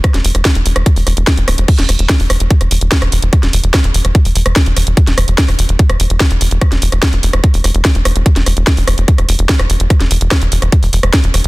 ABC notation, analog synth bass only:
X:1
M:4/4
L:1/16
Q:1/4=146
K:Dmix
V:1 name="Analog synth bass" clef=bass
z E,,, E,,, E,,, z E,,, E,,, E,,, z E,,, E,,, E,,, z E,,, D,,, E,,, | z E,,, E,,, E,,, z E,,, E,,, E,,, z E,,, E,,, E,,, z E,,, E,,, E,,, | z E,,, E,,, E,,, z E,,, E,,, E,,, z E,,, E,,, E,,, z E,,, E,,, E,,, | z E,,, E,,, E,,, z E,,, E,,, E,,, z E,,, E,,, E,,, z E,,, E,,, E,,, |
z E,,, E,,, E,,, z E,,, E,,, E,,, z E,,, E,,, E,,, z E,,, E,,, E,,, | z E,,, E,,, E,,, z E,,, E,,, E,,, z E,,, E,,, E,,, z E,,, E,,, E,,, | z E,,, E,,, E,,, z E,,, E,,, E,,, z E,,, E,,, E,,, z E,,, E,,, E,,, |]